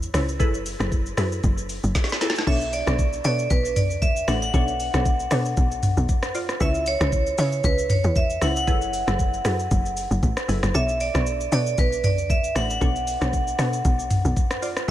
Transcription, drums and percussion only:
0.02 shaker medium
0.14 cross-stick loud
0.14 open hi-hat medium
0.14 shaker medium
0.29 shaker medium
0.40 kick loud
0.40 shaker medium
0.54 shaker medium
0.66 open hi-hat medium
0.66 shaker medium
0.80 cross-stick loud
0.80 shaker medium
0.92 kick loud
0.92 shaker medium
1.06 shaker medium
1.17 cross-stick loud
1.17 open hi-hat medium
1.17 shaker loud
1.32 shaker medium
1.43 kick loud
1.43 shaker medium
1.58 shaker medium
1.69 open hi-hat medium
1.69 shaker loud
1.83 shaker medium
1.95 kick loud
1.95 snare medium
1.95 shaker medium
2.04 snare medium
2.09 snare medium
2.09 shaker medium
2.21 snare medium
2.21 open hi-hat soft
2.21 shaker medium
2.30 snare loud
2.36 snare loud
2.36 shaker medium
2.47 kick loud
2.47 crash medium
2.61 shaker medium
2.73 open hi-hat medium
2.73 shaker medium
2.87 cross-stick loud
2.87 shaker medium
2.99 kick medium
2.99 shaker medium
3.13 shaker medium
3.24 open hi-hat medium
3.24 shaker loud
3.39 shaker medium
3.50 kick loud
3.50 shaker medium
3.65 shaker medium
3.76 mid tom loud
3.76 open hi-hat medium
3.76 shaker loud
3.91 shaker medium
4.02 kick loud
4.02 shaker medium
4.16 shaker medium
4.28 cross-stick loud
4.28 open hi-hat medium
4.28 shaker medium
4.42 shaker medium
4.54 kick loud
4.54 shaker medium
4.68 shaker medium
4.80 open hi-hat medium
4.80 shaker medium
4.94 cross-stick loud
4.94 shaker medium
5.05 kick loud
5.05 shaker medium
5.20 shaker medium
5.31 cross-stick loud
5.31 open hi-hat medium
5.31 shaker loud
5.45 shaker medium
5.57 kick loud
5.57 shaker medium
5.71 shaker medium
5.83 mid tom loud
5.83 open hi-hat medium
5.83 shaker loud
5.97 shaker medium
6.09 kick loud
6.09 shaker medium
6.23 cross-stick loud
6.23 shaker medium
6.35 open hi-hat medium
6.35 shaker medium
6.49 cross-stick medium
6.49 shaker medium
6.60 kick loud
6.60 shaker medium
6.75 shaker medium
6.86 open hi-hat medium
6.86 shaker medium
7.01 cross-stick loud
7.01 shaker medium
7.12 kick medium
7.12 shaker medium
7.26 shaker medium
7.38 open hi-hat medium
7.38 shaker loud
7.52 shaker medium
7.64 kick loud
7.64 shaker medium
7.78 shaker medium
7.90 mid tom loud
7.90 open hi-hat medium
7.90 shaker loud
8.04 shaker soft
8.16 kick loud
8.16 shaker medium
8.30 shaker medium
8.41 cross-stick medium
8.41 open hi-hat soft
8.41 shaker medium
8.56 shaker medium
8.68 kick loud
8.68 shaker medium
8.82 shaker medium
8.93 open hi-hat medium
8.93 shaker medium
9.08 cross-stick loud
9.08 shaker medium
9.19 kick medium
9.19 shaker medium
9.34 shaker medium
9.45 cross-stick loud
9.45 open hi-hat medium
9.45 shaker loud
9.59 shaker medium
9.71 kick loud
9.71 shaker medium
9.86 shaker medium
9.97 open hi-hat medium
9.97 shaker loud
10.11 shaker medium
10.23 kick loud
10.23 shaker medium
10.37 cross-stick loud
10.37 shaker medium
10.49 open hi-hat medium
10.49 shaker medium
10.63 cross-stick loud
10.63 shaker medium
10.75 shaker medium
10.89 shaker medium
11.00 open hi-hat medium
11.00 shaker medium
11.15 cross-stick loud
11.15 shaker medium
11.26 shaker medium
11.41 shaker medium
11.52 open hi-hat medium
11.52 shaker loud
11.67 shaker medium
11.78 kick loud
11.78 shaker medium
11.92 shaker medium
12.04 mid tom loud
12.04 open hi-hat medium
12.04 shaker loud
12.18 shaker soft
12.30 kick loud
12.30 shaker medium
12.44 shaker medium
12.56 cross-stick loud
12.56 open hi-hat medium
12.56 shaker medium
12.70 shaker medium
12.81 kick loud
12.81 shaker medium
12.96 shaker medium
13.07 open hi-hat medium
13.07 shaker medium
13.22 cross-stick loud
13.22 shaker medium
13.33 kick medium
13.33 shaker medium
13.47 shaker medium
13.59 cross-stick loud
13.59 open hi-hat medium
13.59 shaker loud
13.73 shaker medium
13.85 kick loud
13.85 shaker medium
13.99 shaker medium
14.10 mid tom loud
14.10 open hi-hat medium
14.10 shaker medium
14.25 shaker medium
14.37 kick loud
14.37 shaker medium
14.51 cross-stick loud
14.51 shaker medium
14.63 open hi-hat medium
14.63 shaker medium
14.77 cross-stick loud
14.77 shaker medium

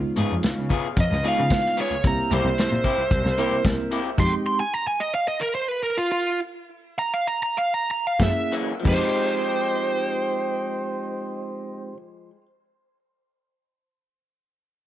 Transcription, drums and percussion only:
0.16 closed hi-hat medium
0.43 snare loud
0.43 closed hi-hat medium
0.70 kick medium
0.70 closed hi-hat medium
0.96 kick loud
0.96 closed hi-hat medium
1.12 snare soft
1.24 closed hi-hat medium
1.50 kick medium
1.50 snare loud
1.50 closed hi-hat loud
1.65 snare soft
1.77 closed hi-hat medium
2.04 kick loud
2.04 closed hi-hat medium
2.31 closed hi-hat medium
2.58 snare loud
2.58 closed hi-hat medium
2.84 kick medium
2.84 closed hi-hat soft
3.11 kick loud
3.11 closed hi-hat medium
3.26 snare soft
3.38 closed hi-hat medium
3.64 kick medium
3.64 snare loud
3.64 closed hi-hat medium
3.91 closed hi-hat medium
4.18 kick loud
4.18 closed hi-hat medium
4.18 crash medium
8.20 kick medium
8.20 snare loud
8.20 closed hi-hat medium
8.53 closed hi-hat medium
8.85 kick loud
8.85 crash loud

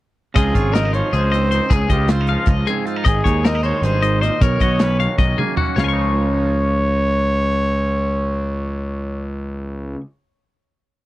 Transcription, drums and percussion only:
0.36 kick loud
0.36 closed hi-hat medium
0.55 kick medium
0.55 closed hi-hat medium
0.75 snare loud
0.75 closed hi-hat medium
0.94 closed hi-hat medium
1.13 closed hi-hat medium
1.33 closed hi-hat medium
1.51 closed hi-hat medium
1.71 kick loud
1.71 closed hi-hat medium
1.90 kick medium
1.90 closed hi-hat medium
2.08 snare loud
2.08 closed hi-hat medium
2.27 closed hi-hat soft
2.46 kick loud
2.46 closed hi-hat medium
2.67 closed hi-hat medium
2.87 closed hi-hat soft
3.06 kick loud
3.06 closed hi-hat medium
3.25 kick medium
3.25 closed hi-hat medium
3.45 snare loud
3.45 closed hi-hat medium
3.63 closed hi-hat soft
3.83 snare soft
3.83 closed hi-hat medium
4.03 closed hi-hat medium
4.23 snare soft
4.23 closed hi-hat medium
4.41 kick loud
4.41 closed hi-hat medium
4.60 kick medium
4.60 snare soft
4.60 closed hi-hat medium
4.79 snare loud
4.79 closed hi-hat medium
5.00 closed hi-hat medium
5.18 kick loud
5.18 snare medium
5.38 mid tom medium
5.57 floor tom medium
5.78 snare medium

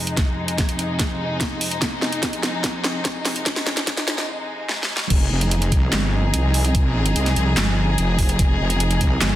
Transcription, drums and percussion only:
0.07 closed hi-hat medium
0.17 kick medium
0.17 snare medium
0.17 closed hi-hat medium
0.48 closed hi-hat medium
0.58 kick loud
0.58 snare medium
0.58 closed hi-hat medium
0.69 closed hi-hat medium
0.79 closed hi-hat medium
0.99 kick medium
0.99 snare medium
0.99 closed hi-hat medium
1.40 kick loud
1.40 snare medium
1.40 closed hi-hat medium
1.61 open hi-hat medium
1.71 closed hi-hat medium
1.82 kick loud
1.82 snare medium
1.82 closed hi-hat medium
2.02 snare medium
2.12 closed hi-hat soft
2.23 kick loud
2.23 snare medium
2.23 closed hi-hat medium
2.33 closed hi-hat medium
2.43 snare medium
2.43 closed hi-hat soft
2.64 kick loud
2.64 snare medium
2.64 closed hi-hat medium
2.84 snare medium
3.05 kick loud
3.05 snare medium
3.05 closed hi-hat medium
3.25 snare medium
3.25 open hi-hat medium
3.36 closed hi-hat medium
3.46 kick loud
3.46 snare medium
3.46 closed hi-hat medium
3.56 snare medium
3.67 snare medium
3.77 snare medium
3.77 closed hi-hat soft
3.87 kick loud
3.87 snare loud
3.87 closed hi-hat medium
3.97 snare medium
3.97 closed hi-hat soft
4.08 snare loud
4.08 closed hi-hat medium
4.18 snare medium
4.69 snare medium
4.83 snare medium
4.97 snare loud
5.10 kick loud
5.10 closed hi-hat medium
5.10 crash loud
5.41 closed hi-hat medium
5.51 closed hi-hat medium
5.62 closed hi-hat medium
5.72 kick medium
5.72 closed hi-hat medium
5.93 snare loud
5.93 clap loud
5.93 closed hi-hat medium
6.34 closed hi-hat medium
6.54 open hi-hat medium
6.65 closed hi-hat medium
6.75 kick loud
6.75 closed hi-hat medium
7.06 closed hi-hat medium
7.16 closed hi-hat medium
7.26 snare soft
7.26 closed hi-hat medium
7.36 closed hi-hat medium
7.57 snare loud
7.57 clap loud
7.57 closed hi-hat medium
7.98 closed hi-hat medium
8.19 kick medium
8.19 open hi-hat medium
8.29 closed hi-hat medium
8.39 kick loud
8.39 closed hi-hat medium
8.70 closed hi-hat medium
8.80 closed hi-hat medium
8.91 closed hi-hat medium
9.01 kick medium
9.01 closed hi-hat medium
9.21 snare loud
9.21 clap medium
9.21 closed hi-hat medium

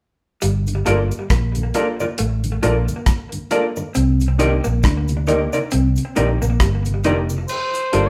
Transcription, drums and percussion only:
0.41 closed hi-hat medium
0.41 cabasa medium
0.67 closed hi-hat soft
0.67 cabasa soft
0.86 closed hi-hat medium
0.86 cabasa soft
1.11 closed hi-hat soft
1.11 cabasa medium
1.30 kick loud
1.30 cross-stick loud
1.30 closed hi-hat medium
1.30 cabasa medium
1.55 closed hi-hat soft
1.55 cabasa soft
1.74 closed hi-hat medium
1.74 cabasa medium
2.00 cabasa medium
2.18 closed hi-hat medium
2.18 cabasa medium
2.44 closed hi-hat soft
2.44 cabasa soft
2.63 closed hi-hat medium
2.63 cabasa soft
2.88 closed hi-hat soft
2.88 cabasa medium
3.06 kick loud
3.06 cross-stick medium
3.06 closed hi-hat medium
3.06 cabasa medium
3.32 closed hi-hat medium
3.32 cabasa soft
3.51 closed hi-hat medium
3.51 cabasa soft
3.76 cabasa medium
3.94 closed hi-hat medium
3.94 cabasa medium
4.20 closed hi-hat medium
4.20 cabasa soft
4.39 closed hi-hat medium
4.39 cabasa soft
4.64 cabasa medium
4.83 kick loud
4.83 cross-stick loud
4.83 closed hi-hat medium
4.83 cabasa medium
5.08 closed hi-hat soft
5.08 cabasa soft
5.27 closed hi-hat medium
5.27 cabasa soft
5.53 closed hi-hat soft
5.53 cabasa medium
5.71 closed hi-hat medium
5.71 cabasa medium
5.96 closed hi-hat medium
5.96 cabasa soft
6.16 closed hi-hat medium
6.16 cabasa soft
6.42 cabasa medium
6.60 kick medium
6.60 cross-stick loud
6.60 closed hi-hat medium
6.60 cabasa medium
6.85 closed hi-hat medium
6.85 cabasa soft
7.04 closed hi-hat medium
7.04 cabasa soft
7.29 cabasa medium
7.48 crash medium
7.48 cabasa medium
7.74 closed hi-hat medium
7.74 cabasa soft
7.93 closed hi-hat medium
7.93 cabasa soft

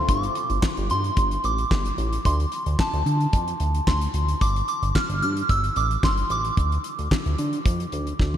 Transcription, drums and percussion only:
0.09 kick loud
0.09 closed hi-hat medium
0.23 closed hi-hat soft
0.35 closed hi-hat medium
0.50 closed hi-hat soft
0.63 kick loud
0.63 snare loud
0.63 clap medium
0.77 closed hi-hat soft
0.90 closed hi-hat medium
1.04 closed hi-hat medium
1.17 kick loud
1.17 closed hi-hat medium
1.31 closed hi-hat medium
1.44 closed hi-hat medium
1.58 closed hi-hat soft
1.71 kick loud
1.71 snare medium
1.71 clap medium
1.86 closed hi-hat medium
1.98 closed hi-hat medium
2.13 closed hi-hat medium
2.25 kick loud
2.25 closed hi-hat medium
2.40 closed hi-hat soft
2.52 closed hi-hat medium
2.66 closed hi-hat soft
2.79 kick loud
2.79 snare loud
2.79 clap medium
2.93 closed hi-hat soft
3.06 closed hi-hat medium
3.21 closed hi-hat soft
3.33 kick loud
3.33 closed hi-hat medium
3.48 closed hi-hat medium
3.60 closed hi-hat medium
3.75 closed hi-hat soft
3.87 kick loud
3.87 snare medium
3.87 clap medium
4.01 closed hi-hat medium
4.14 closed hi-hat medium
4.28 closed hi-hat medium
4.41 kick loud
4.41 closed hi-hat medium
4.56 closed hi-hat soft
4.68 closed hi-hat medium
4.83 closed hi-hat medium
4.95 kick loud
4.95 snare loud
4.95 clap medium
5.10 closed hi-hat soft
5.22 closed hi-hat medium
5.37 closed hi-hat medium
5.49 kick loud
5.49 closed hi-hat medium
5.64 closed hi-hat medium
5.76 closed hi-hat medium
5.91 closed hi-hat soft
6.03 kick loud
6.03 snare medium
6.03 clap medium
6.18 closed hi-hat medium
6.30 closed hi-hat medium
6.45 closed hi-hat soft
6.57 kick loud
6.57 closed hi-hat medium
6.72 closed hi-hat soft
6.84 closed hi-hat medium
6.99 closed hi-hat soft
7.11 kick loud
7.11 snare loud
7.11 clap medium
7.26 closed hi-hat soft
7.38 closed hi-hat medium
7.53 closed hi-hat soft
7.66 kick loud
7.66 closed hi-hat medium
7.80 closed hi-hat soft
7.92 closed hi-hat medium
8.07 closed hi-hat medium
8.19 kick loud
8.19 snare soft
8.34 high tom medium

